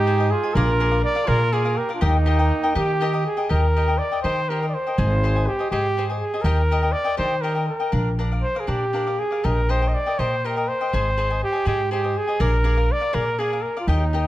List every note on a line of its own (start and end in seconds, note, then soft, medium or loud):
0.00 0.29 G#2 medium
0.00 0.34 D#4 medium
0.00 0.32 G4 medium
0.07 0.19 G#4 medium
0.07 0.19 C5 medium
0.07 0.19 D#5 medium
0.07 0.17 G#5 medium
0.18 0.34 C5 soft
0.18 0.34 D#5 soft
0.18 0.33 G#5 soft
0.30 0.55 F4 medium
0.30 0.56 G#4 medium
0.43 0.55 C5 soft
0.43 0.55 D#5 soft
0.43 0.55 G#5 soft
0.54 1.02 A#1 medium
0.54 1.02 F4 medium
0.54 0.70 G#4 medium
0.54 1.03 A#4 medium
0.54 0.70 A#4 medium
0.54 0.71 D5 medium
0.54 0.70 F5 medium
0.80 0.92 G#4 medium
0.80 0.91 A#4 medium
0.80 0.90 D5 medium
0.80 0.90 F5 medium
0.91 1.06 A#4 soft
0.91 1.06 D5 soft
0.91 1.06 F5 soft
1.02 1.27 A#4 medium
1.02 1.30 D5 medium
1.15 1.26 A#4 soft
1.15 1.26 D5 soft
1.15 1.26 F5 soft
1.25 1.76 A#2 medium
1.25 1.52 F4 medium
1.25 1.42 G#4 medium
1.25 1.42 A#4 soft
1.25 1.54 A#4 medium
1.25 1.43 D5 medium
1.25 1.42 F5 medium
1.52 1.77 F4 medium
1.52 1.65 G#4 medium
1.52 1.79 G#4 medium
1.52 1.64 A#4 medium
1.52 1.63 D5 medium
1.52 1.64 F5 medium
1.64 1.79 A#4 soft
1.64 1.79 D5 soft
1.64 1.79 F5 soft
1.75 1.93 G4 medium
1.75 1.94 A#4 medium
1.89 2.00 A#4 soft
1.89 2.01 D5 soft
1.89 2.01 F5 soft
1.94 2.03 D4 soft
1.94 2.04 F4 soft
2.01 2.50 D#2 medium
2.01 3.25 A#3 medium
2.01 2.75 D#4 medium
2.01 2.16 G4 medium
2.01 2.16 A#4 medium
2.01 2.16 D#5 medium
2.01 2.17 G5 medium
2.26 2.38 G4 medium
2.26 2.38 A#4 medium
2.26 2.38 D#5 medium
2.26 2.38 G5 medium
2.39 2.54 A#4 soft
2.39 2.53 D#5 soft
2.39 2.53 G5 soft
2.63 2.74 A#4 soft
2.63 2.74 D#5 soft
2.63 2.75 G5 medium
2.75 3.24 D#3 medium
2.75 3.22 G4 medium
2.75 2.90 G4 medium
2.75 2.91 A#4 medium
2.75 2.91 D#5 medium
2.75 2.91 G5 medium
3.00 3.13 G4 medium
3.00 3.13 A#4 medium
3.00 3.13 D#5 medium
3.00 3.12 G5 medium
3.13 3.28 A#4 soft
3.13 3.28 D#5 soft
3.13 3.28 G5 soft
3.26 3.51 G#4 medium
3.37 3.49 A#4 soft
3.37 3.49 D#5 soft
3.37 3.49 G5 soft
3.49 3.99 D#2 medium
3.49 3.65 G4 medium
3.49 3.65 A#4 medium
3.49 4.00 A#4 medium
3.49 3.65 D#5 medium
3.49 3.66 G5 medium
3.76 3.88 G4 soft
3.76 3.88 A#4 soft
3.76 3.88 D#5 medium
3.76 3.86 G5 medium
3.88 4.03 A#4 soft
3.88 4.03 D#5 soft
3.88 4.02 G5 soft
3.98 4.22 D5 medium
4.11 4.23 A#4 soft
4.11 4.23 D#5 soft
4.11 4.24 G5 soft
4.23 4.72 D#3 medium
4.23 4.39 G4 medium
4.23 4.39 A#4 medium
4.23 4.51 C5 medium
4.23 4.40 D#5 medium
4.23 4.40 G5 medium
4.49 4.62 G4 medium
4.49 4.67 A#4 medium
4.49 4.62 A#4 soft
4.49 4.62 D#5 soft
4.49 4.61 G5 medium
4.62 4.78 A#4 soft
4.62 4.77 D#5 soft
4.62 4.77 G5 soft
4.69 4.76 D5 medium
4.74 5.48 C5 medium
4.87 4.98 A#4 soft
4.87 4.97 D#5 soft
4.87 4.98 G5 soft
4.98 5.46 G#1 loud
4.98 5.13 G#4 medium
4.98 5.14 C5 medium
4.98 5.13 D#5 medium
4.98 5.14 G#5 medium
5.23 5.35 G#4 soft
5.23 5.36 C5 medium
5.23 5.36 D#5 medium
5.23 5.35 G#5 medium
5.36 5.51 C5 soft
5.36 5.51 D#5 soft
5.36 5.50 G#5 soft
5.47 5.70 G4 medium
5.59 5.71 C5 soft
5.59 5.71 D#5 soft
5.59 5.71 G#5 soft
5.71 6.19 G#2 medium
5.71 6.05 G4 medium
5.71 5.87 G#4 soft
5.71 5.87 C5 medium
5.71 5.87 D#5 medium
5.71 5.87 G#5 medium
5.97 6.09 G#4 soft
5.97 6.09 C5 medium
5.97 6.09 D#5 medium
5.97 6.08 G#5 medium
6.10 6.24 C5 soft
6.10 6.24 D#5 soft
6.10 6.23 G#5 soft
6.19 6.43 G#4 medium
6.34 6.45 C5 soft
6.34 6.45 D#5 soft
6.34 6.45 G#5 soft
6.42 6.92 D#2 loud
6.42 6.60 G4 medium
6.42 6.94 A#4 medium
6.42 6.60 A#4 medium
6.46 6.61 D#5 medium
6.46 6.61 G5 medium
6.71 6.83 G4 medium
6.71 6.82 A#4 medium
6.71 6.82 D#5 medium
6.71 6.81 G5 medium
6.82 6.97 A#4 soft
6.82 6.97 D#5 soft
6.82 6.97 G5 soft
6.92 7.18 D5 medium
7.04 7.17 A#4 soft
7.04 7.17 D#5 soft
7.04 7.18 G5 soft
7.17 7.67 D#3 medium
7.17 7.33 G4 medium
7.17 7.34 A#4 medium
7.17 7.43 C5 medium
7.17 7.34 D#5 medium
7.17 7.34 G5 medium
7.42 7.56 G4 soft
7.42 7.67 A#4 medium
7.42 7.56 A#4 soft
7.42 7.55 D#5 medium
7.42 7.54 G5 medium
7.55 7.72 A#4 soft
7.55 7.71 D#5 soft
7.55 7.70 G5 soft
7.68 8.13 A#4 medium
7.80 7.91 A#4 soft
7.80 7.93 D#5 soft
7.80 7.92 G5 soft
7.92 8.42 A#1 medium
7.92 8.08 D4 medium
7.92 8.08 A#4 medium
7.92 8.09 D5 medium
7.92 8.08 F5 medium
8.19 8.31 D4 medium
8.19 8.31 A#4 soft
8.19 8.30 D5 medium
8.19 8.31 F5 medium
8.32 8.47 A#4 soft
8.32 8.46 D5 soft
8.32 8.47 F5 soft
8.42 8.61 C5 medium
8.55 8.66 A#4 soft
8.55 8.67 D5 soft
8.55 8.67 F5 soft
8.60 8.70 G#4 medium
8.67 9.17 A#2 medium
8.67 8.83 D4 medium
8.67 9.21 G4 medium
8.67 8.84 A#4 medium
8.67 8.84 D5 medium
8.67 8.84 F5 medium
8.93 9.06 D4 medium
8.93 9.07 A#4 soft
8.93 9.05 D5 medium
8.93 9.06 F5 soft
9.07 9.22 A#4 soft
9.07 9.22 D5 soft
9.07 9.22 F5 soft
9.19 9.46 G#4 medium
9.31 9.43 A#4 soft
9.31 9.44 D5 soft
9.31 9.44 F5 soft
9.43 9.93 A#1 medium
9.43 9.59 G4 medium
9.43 9.60 A#4 medium
9.43 9.72 A#4 medium
9.43 9.60 D#5 medium
9.43 9.60 G5 medium
9.69 9.82 G4 medium
9.69 9.82 A#4 medium
9.69 9.89 C5 medium
9.69 9.81 D#5 medium
9.69 9.80 G5 medium
9.82 9.97 A#4 soft
9.82 9.97 D#5 soft
9.82 9.97 G5 soft
9.88 9.96 D#5 medium
9.94 10.20 D5 medium
10.06 10.18 A#4 soft
10.06 10.18 D#5 soft
10.06 10.19 G5 soft
10.19 10.67 A#2 medium
10.19 10.34 G4 medium
10.19 10.34 A#4 medium
10.19 10.47 C5 medium
10.19 10.34 D#5 medium
10.19 10.35 G5 medium
10.44 10.56 G4 medium
10.44 10.57 A#4 medium
10.44 10.70 A#4 medium
10.44 10.56 D#5 medium
10.44 10.55 G5 medium
10.56 10.72 A#4 soft
10.56 10.71 D#5 soft
10.56 10.71 G5 soft
10.68 11.42 C5 medium
10.81 10.93 A#4 soft
10.81 10.93 D#5 soft
10.81 10.93 G5 soft
10.93 11.41 G#1 medium
10.93 11.08 G#4 medium
10.93 11.08 C5 medium
10.93 11.09 D#5 medium
10.93 11.08 G#5 medium
11.17 11.30 G#4 medium
11.17 11.30 C5 medium
11.17 11.30 D#5 medium
11.17 11.29 G#5 medium
11.30 11.45 C5 soft
11.30 11.45 D#5 soft
11.30 11.45 G#5 soft
11.44 11.65 G4 medium
11.53 11.65 C5 soft
11.53 11.66 D#5 soft
11.53 11.65 G#5 soft
11.65 12.14 G#2 medium
11.65 11.90 G4 medium
11.65 11.81 G#4 medium
11.65 11.81 C5 medium
11.65 11.82 D#5 medium
11.65 11.81 G#5 medium
11.91 12.19 G4 medium
11.91 12.03 G#4 medium
11.91 12.04 C5 medium
11.91 12.03 D#5 medium
11.91 12.03 G#5 medium
12.04 12.19 C5 soft
12.04 12.18 D#5 soft
12.04 12.18 G#5 soft
12.18 12.43 G#4 medium
12.27 12.39 C5 soft
12.27 12.40 D#5 soft
12.27 12.40 G#5 soft
12.40 12.88 A#1 loud
12.40 12.55 G#4 medium
12.40 12.55 A#4 medium
12.40 12.93 A#4 medium
12.40 12.56 D5 medium
12.40 12.55 F5 medium
12.64 12.77 G#4 medium
12.64 12.76 A#4 medium
12.64 12.74 D5 medium
12.64 12.75 F5 medium
12.75 12.92 A#4 soft
12.75 12.91 D5 soft
12.75 12.92 F5 soft
12.92 13.16 D5 medium
13.00 13.12 A#4 soft
13.00 13.13 D5 soft
13.00 13.12 F5 soft
13.13 13.63 A#2 medium
13.13 13.29 G#4 medium
13.13 13.29 A#4 medium
13.13 13.41 A#4 medium
13.13 13.29 D5 medium
13.13 13.29 F5 medium
13.39 13.51 G#4 medium
13.39 13.63 G#4 medium
13.39 13.52 A#4 medium
13.39 13.51 D5 medium
13.39 13.52 F5 medium
13.52 13.67 A#4 soft
13.52 13.67 D5 soft
13.52 13.67 F5 soft
13.62 13.80 A#4 medium
13.77 13.89 F4 medium
13.77 13.87 A#4 soft
13.77 13.88 D5 medium
13.77 13.89 F5 soft
13.88 14.27 D#2 medium
13.88 14.27 D#4 medium
13.88 14.03 G4 medium
13.88 14.04 A#4 medium
13.88 14.04 D#5 medium
13.88 14.04 G5 medium
14.13 14.26 G4 medium
14.13 14.26 A#4 medium
14.13 14.26 D#5 medium
14.13 14.25 G5 medium